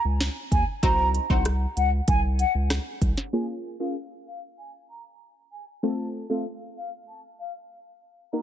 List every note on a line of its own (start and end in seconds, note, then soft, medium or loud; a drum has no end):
0.05 0.29 C#2 medium
0.20 snare loud
0.20 closed hi-hat medium
0.52 0.64 D#2 medium
0.52 0.64 G#5 medium
0.52 kick medium
0.52 closed hi-hat medium
0.83 1.19 C2 loud
0.83 1.26 C4 loud
0.83 1.26 D#4 medium
0.83 1.26 F#4 medium
0.83 1.26 C5 loud
0.83 1.08 A#5 loud
0.83 kick loud
0.83 closed hi-hat medium
1.14 closed hi-hat medium
1.30 1.66 C2 loud
1.30 1.46 C4 medium
1.30 1.46 D#4 medium
1.30 1.46 F#4 medium
1.30 1.46 C5 medium
1.30 1.42 F#5 medium
1.30 kick medium
1.45 cross-stick medium
1.45 closed hi-hat medium
1.77 2.01 C#2 medium
1.77 1.89 F#5 medium
1.77 closed hi-hat medium
2.08 2.44 C2 loud
2.08 2.20 G#5 medium
2.08 kick loud
2.08 closed hi-hat medium
2.39 2.52 F#5 medium
2.39 closed hi-hat medium
2.55 2.79 C#2 medium
2.70 cross-stick loud
2.70 snare loud
2.70 closed hi-hat medium
3.02 3.14 C2 loud
3.02 kick loud
3.02 closed hi-hat medium
3.18 snare medium
3.33 3.76 A#3 medium
3.33 3.76 C#4 medium
3.33 3.76 F4 medium
3.33 3.76 G#4 loud
3.33 3.45 G#5 medium
3.80 3.96 A#3 medium
3.80 3.96 C#4 medium
3.80 3.96 F4 medium
3.80 3.96 G#4 medium
3.80 3.92 F5 medium
4.27 4.39 F5 medium
4.58 4.70 G#5 medium
4.89 5.02 A#5 medium
5.52 5.64 G#5 medium
5.83 6.26 A3 medium
5.83 6.26 C4 medium
5.83 6.26 F4 medium
5.83 6.26 A4 loud
5.83 6.08 A5 medium
6.30 6.46 A3 medium
6.30 6.46 C4 medium
6.30 6.46 F4 medium
6.30 6.46 A4 medium
6.30 6.42 F5 medium
6.77 6.89 F5 medium
7.08 7.20 A5 medium
7.39 7.51 F5 medium
8.33 8.42 A#3 medium
8.33 8.42 D#4 medium
8.33 8.42 F#4 medium
8.33 8.42 A#4 loud
8.33 8.42 A#5 medium